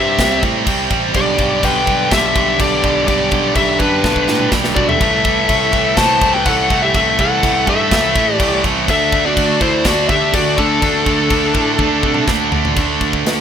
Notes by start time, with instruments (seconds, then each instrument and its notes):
Already playing: picked electric bass G2, distorted electric guitar C3 G3 C4, lead electric guitar G4 E5
0.18 picked electric bass C2, distorted electric guitar C3 G3 C4, kick, snare, crash
0.41 picked electric bass A2, distorted electric guitar C3 G3 C4, kick, crash
0.67 picked electric bass C2, distorted electric guitar C3 G3 C4, kick, crash
0.90 picked electric bass A1, distorted electric guitar C3 G3 C4, kick, crash
1.14 picked electric bass B1, distorted electric guitar G2 D3 G3, lead electric guitar G4 D5, kick, crash
1.38 distorted electric guitar G2 D3 G3, kick, crash
1.63 picked electric bass B1, distorted electric guitar G2 D3 G3, lead electric guitar B4 G5, kick, crash
1.86 picked electric bass B1, distorted electric guitar G2 D3 G3, kick, crash
2.10 picked electric bass B1, distorted electric guitar G2 D3 G3, lead electric guitar G4 E5, kick, snare, crash
2.34 picked electric bass B1, distorted electric guitar G2 D3 G3, kick, crash
2.58 picked electric bass B1, distorted electric guitar G2 D3 G3, lead electric guitar G4 D5, kick, crash
2.82 picked electric bass B1, distorted electric guitar G2 D3 G3, kick, crash
3.07 picked electric bass B1, distorted electric guitar G2 D3 G3, lead electric guitar G4 D5, kick, crash
3.31 picked electric bass B1, distorted electric guitar G2 D3 G3, kick, crash
3.55 picked electric bass B1, distorted electric guitar G2 D3 G3, lead electric guitar G4 E5, kick, crash
3.79 picked electric bass F#2, distorted electric guitar G2 D3 G3, lead electric guitar D4 B4, kick, crash
4.03 picked electric bass B1, distorted electric guitar G2 D3 G3, kick, snare
4.16 kick
4.27 distorted electric guitar G2 D3 G3, picked electric bass A2, snare
4.40 mid tom
4.51 picked electric bass B1, distorted electric guitar G2 D3 G3, kick, snare
4.64 snare
4.75 picked electric bass B1, distorted electric guitar G2 D3 G3, lead electric guitar F#4 D5, kick
4.89 lead electric guitar A4 E5, floor tom
5.00 picked electric bass C2, distorted electric guitar A2 E3 A3, kick, crash
5.24 distorted electric guitar A2 E3 A3, kick, crash
5.49 picked electric bass C2, distorted electric guitar A2 E3 A3, kick, crash
5.73 picked electric bass C2, distorted electric guitar A2 E3 A3, kick, crash
5.97 picked electric bass C2, distorted electric guitar A2 E3 A3, lead electric guitar C5 A5, kick, snare, crash
6.21 picked electric bass C2, distorted electric guitar A2 E3 A3, kick, crash
6.34 lead electric guitar B4 G5
6.45 picked electric bass C2, distorted electric guitar A2 E3 A3, lead electric guitar A4 F#5, kick, crash
6.70 picked electric bass C2, distorted electric guitar A2 E3 A3, kick, crash
6.82 lead electric guitar G4 E5
6.94 picked electric bass C2, distorted electric guitar A2 E3 A3, lead electric guitar A4 E5, kick, crash
7.19 picked electric bass C2, distorted electric guitar A2 E3 A3, lead electric guitar A4 F#5, kick, crash
7.43 picked electric bass C2, distorted electric guitar A2 E3 A3, kick, crash
7.67 picked electric bass G2, distorted electric guitar A2 E3 A3, lead electric guitar A4 E5, kick, crash
7.91 picked electric bass C2, distorted electric guitar A2 E3 A3, kick, snare, crash
8.15 distorted electric guitar A2 E3 A3, picked electric bass A2, kick, crash
8.33 lead electric guitar G4 D5
8.38 picked electric bass C2, distorted electric guitar A2 E3 A3, kick, crash
8.63 picked electric bass C2, distorted electric guitar A2 E3 A3, kick, crash
8.87 picked electric bass D2, distorted electric guitar D3 A3 D4, lead electric guitar A4 E5, kick, crash
9.11 distorted electric guitar D3 A3 D4, kick, crash
9.26 lead electric guitar F#4 D5
9.37 picked electric bass D2, distorted electric guitar D3 A3 D4, kick, crash
9.61 picked electric bass D2, distorted electric guitar D3 A3 D4, lead electric guitar E4 C5, kick, crash
9.85 picked electric bass D2, distorted electric guitar D3 A3 D4, lead electric guitar F#4 D5, kick, snare, crash
10.08 picked electric bass D2, distorted electric guitar D3 A3 D4, lead electric guitar G4 E5, kick, crash
10.33 picked electric bass D2, distorted electric guitar D3 A3 D4, lead electric guitar F#4 D5, kick, crash
10.56 picked electric bass D2, distorted electric guitar D3 A3 D4, lead electric guitar D4 A4, kick, crash
10.81 picked electric bass D2, distorted electric guitar D3 A3 D4, kick, crash
11.06 picked electric bass D2, distorted electric guitar D3 A3 D4, kick, crash
11.30 picked electric bass D2, distorted electric guitar D3 A3 D4, kick, crash
11.54 picked electric bass A2, distorted electric guitar D3 A3 D4, kick, crash
11.78 picked electric bass D2, distorted electric guitar D3 A3 D4, kick, high tom
12.03 picked electric bass C3, distorted electric guitar D3 A3 D4, kick
12.14 mid tom
12.26 picked electric bass D2, distorted electric guitar D3 A3 D4, kick, snare
12.51 picked electric bass D2, distorted electric guitar D3 A3 D4, floor tom
12.65 floor tom
12.76 picked electric bass D2, distorted electric guitar D3 A3 D4, kick, crash
13.01 picked electric bass D2, kick, crash
13.13 kick
13.25 picked electric bass D2, snare, crash